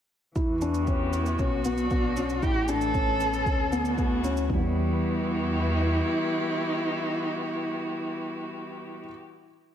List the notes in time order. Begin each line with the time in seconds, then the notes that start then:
0.36 E2 E3 E4, kick, shaker
0.44 F#4
0.61 D4, shaker
0.70 B3
0.74 shaker
0.82 G4
0.87 C#4, kick, shaker
1.13 E4, shaker
1.26 shaker
1.39 B1 B2 C#4 F#4, kick, shaker
1.65 B3, shaker
1.78 F#3, shaker
1.86 D4
1.90 B3, kick, shaker
2.17 C#4, shaker
2.29 shaker
2.42 A1 A2 E4 G4, kick, shaker
2.60 E3
2.68 D4 A4, shaker
2.81 shaker
2.88 B3 C#4
2.94 C#4, kick, shaker
3.20 shaker
3.33 shaker
3.45 D2 D3 C#4, kick, shaker
3.72 A3 B3, shaker
3.85 shaker
3.90 E4 F#4
3.98 B3, kick, shaker
4.24 C#4, shaker
4.37 shaker
4.48 E2 E3 E4, kick
4.54 G3 B3
4.62 E4 F#4
4.72 G4